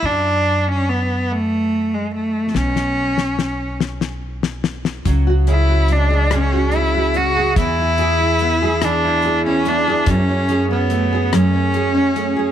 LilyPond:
<<
  \new Staff \with { instrumentName = "Nylon-string guitar" } { \time 6/8 \key fis \minor \tempo 4. = 48 r2. | r2. | cis16 fis'16 gis'16 fis'8 gis'16 cis16 fis'16 gis'16 fis'16 cis'16 gis'16 | e16 e'16 gis'16 e'16 b16 gis'16 e16 e'16 gis'16 e'16 b16 gis'16 |
fis,16 cis'16 gis'16 cis'16 a16 gis'16 fis,16 cis'16 gis'16 cis'16 a16 gis'16 | }
  \new Staff \with { instrumentName = "Cello" } { \time 6/8 \key fis \minor d'8. cis'16 b8 a8. gis16 a8 | cis'4. r4. | r8 e'8 d'8 cis'8 e'8 fis'8 | e'4. d'8. cis'16 d'8 |
cis'8. b8. cis'4. | }
  \new Staff \with { instrumentName = "Steel-string acoustic guitar" } { \time 6/8 \key fis \minor r2. | r2. | fis8 cis'8 gis8 gis'8 cis'8 gis'8 | e8 e'8 b8 gis'8 e'8 gis'8 |
fis8 cis'8 a8 gis'8 cis'8 gis'8 | }
  \new Staff \with { instrumentName = "Upright bass" } { \clef bass \time 6/8 \key fis \minor fis,2. | b,,2. | cis,2. | e,2. |
fis,2. | }
  \new DrumStaff \with { instrumentName = "Drums" } \drummode { \time 6/8 r4. r4. | sn16 sn8 sn16 sn8 sn16 sn8 sn16 sn16 sn16 | <hh bd>8 hh8 hh8 <hh ss>8 hh8 hh8 | <hh bd>8 hh8 hh8 <hh ss>8 hh8 hh8 |
<hh bd>8 hh8 hh8 <hh ss>8 hh8 hh8 | }
>>